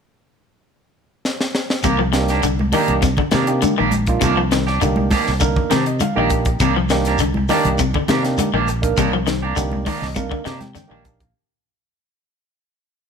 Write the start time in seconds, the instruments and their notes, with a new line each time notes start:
1.25 snare
1.41 snare
1.55 snare
1.70 snare
1.83 fingered electric bass C2, clean electric guitar C3 D#3 A#3 G4, muted clean electric guitar stroke, kick, closed hi-hat, high conga, low conga, shekere
1.99 clean electric guitar F3, muted clean electric guitar stroke
2.13 tine electric piano A#3 D4 D#4 G4, muted clean electric guitar stroke, snare, closed hi-hat, shekere
2.28 clean electric guitar A#3 D4 G4, snare, closed hi-hat
2.43 fingered electric bass C2, clean electric guitar D3, muted clean electric guitar stroke, closed hi-hat, high conga, shekere
2.59 muted clean electric guitar stroke, high conga
2.72 clean electric guitar D#3 A#3 D4 G4, tine electric piano A#3 D4 D#4 G4, open hi-hat, high conga, shekere
2.88 fingered electric bass C2, closed hi-hat, low conga
3.02 clean electric guitar C3, kick, snare, closed hi-hat, high conga, shekere
3.17 clean electric guitar D3, muted clean electric guitar stroke, kick, low conga
3.31 fingered electric bass C3, clean electric guitar D#3 A#3 D4 G4, snare, closed hi-hat, high conga, shekere
3.46 tine electric piano A#3 D4 D#4 G4, muted clean electric guitar stroke, closed hi-hat
3.62 clean electric guitar D3, closed hi-hat, high conga, shekere
3.78 fingered electric bass A#1, clean electric guitar D#3 A#3 D4 G4
3.91 muted clean electric guitar stroke, closed hi-hat, high conga, shekere
4.06 tine electric piano A#3 D4 D#4 F4, muted clean electric guitar stroke, kick, closed hi-hat
4.21 fingered electric bass C2, clean electric guitar C3 D#3 A#3 D4 G4, kick, closed hi-hat, high conga, low conga, shekere
4.37 clean electric guitar F3, muted clean electric guitar stroke
4.51 clean electric guitar D#3, muted clean electric guitar stroke, snare, closed hi-hat, shekere
4.67 clean electric guitar D4 G4, muted clean electric guitar stroke, snare
4.81 fingered electric bass C2, clean electric guitar D3, tine electric piano A#3 D4 D#4 G4, muted clean electric guitar stroke, closed hi-hat, high conga, shekere
4.96 muted clean electric guitar stroke, high conga
5.11 clean electric guitar D#3 A#3 D4 G4, kick, snare, open hi-hat, high conga, shekere
5.27 fingered electric bass C2, snare
5.40 clean electric guitar D3, tine electric piano A#3 D4 D#4 A#4, kick, closed hi-hat, high conga, shekere
5.56 muted clean electric guitar stroke, kick, low conga
5.70 fingered electric bass C3, clean electric guitar D#3 D4 G4, tine electric piano C5, snare, closed hi-hat, high conga, shekere
5.86 tine electric piano D#5, muted clean electric guitar stroke, closed hi-hat
6.00 clean electric guitar D3, tine electric piano F5, closed hi-hat, high conga, shekere
6.16 fingered electric bass A#1, clean electric guitar D#3 A#3 D4 G4, tine electric piano A#3 D4 D#4 G4 G5
6.29 muted clean electric guitar stroke, kick, closed hi-hat, shekere
6.45 muted clean electric guitar stroke, kick, closed hi-hat
6.60 fingered electric bass C2, clean electric guitar C3 D#3 A#3 D4 G4, kick, closed hi-hat, high conga, low conga, shekere
6.76 clean electric guitar F3, muted clean electric guitar stroke
6.89 clean electric guitar D#3, tine electric piano A#3 D4 D#4 G4, muted clean electric guitar stroke, snare, closed hi-hat, shekere
7.05 clean electric guitar A#3 D4 G4, snare, closed hi-hat
7.18 fingered electric bass C2, clean electric guitar D3, muted clean electric guitar stroke, closed hi-hat, high conga, shekere
7.34 muted clean electric guitar stroke, high conga
7.48 clean electric guitar D#3 A#3 D4 G4, tine electric piano A#3 D4 D#4 G4, snare, open hi-hat, high conga, shekere
7.65 fingered electric bass C2, closed hi-hat, low conga
7.78 clean electric guitar C3, kick, closed hi-hat, high conga, shekere
7.94 clean electric guitar D3, muted clean electric guitar stroke, kick, low conga
8.08 fingered electric bass C3, clean electric guitar D#3 A#3 D4 G4, snare, closed hi-hat, high conga, shekere
8.23 tine electric piano A#3 D4 D#4 G4, muted clean electric guitar stroke, snare, closed hi-hat
8.37 clean electric guitar D3, closed hi-hat, high conga, shekere
8.54 fingered electric bass A#1, clean electric guitar D#3 A#3 D4 G4
8.68 muted clean electric guitar stroke, closed hi-hat, shekere
8.82 tine electric piano A#3 D4 D#4 A#4, muted clean electric guitar stroke, kick, closed hi-hat
8.97 fingered electric bass C2, clean electric guitar C3 D#3 A#3 D4 G4, kick, closed hi-hat, high conga, low conga, shekere
9.13 clean electric guitar F3, muted clean electric guitar stroke
9.26 clean electric guitar D#3, muted clean electric guitar stroke, snare, closed hi-hat, shekere
9.42 clean electric guitar A#3 D4 G4
9.56 fingered electric bass C2, clean electric guitar D3, tine electric piano A#3 D4 D#4 G4, muted clean electric guitar stroke, closed hi-hat, high conga, shekere
9.71 muted clean electric guitar stroke, high conga
9.85 clean electric guitar D#3 A#3 D4 G4, tine electric piano D5, kick, open hi-hat, high conga, shekere
10.00 fingered electric bass C2, tine electric piano D#5, snare, low conga
10.15 clean electric guitar C3, tine electric piano A#3 D4 D#4 A#4 F5, kick, closed hi-hat, high conga, shekere
10.31 clean electric guitar D3, muted clean electric guitar stroke, kick
10.44 fingered electric bass C3, clean electric guitar D#3 A#3 D4 G4, tine electric piano D#5, snare, closed hi-hat, low conga, shekere
10.60 tine electric piano G5, muted clean electric guitar stroke, snare, closed hi-hat, high conga
10.75 clean electric guitar D3, tine electric piano G5, snare, closed hi-hat, low conga, shekere
10.88 fingered electric bass A#1, clean electric guitar D#3 A#3 D4, tine electric piano A#3 D4 D#4 G4
11.04 tine electric piano F5, muted clean electric guitar stroke, kick, closed hi-hat, shekere
11.20 muted clean electric guitar stroke, kick, closed hi-hat, low conga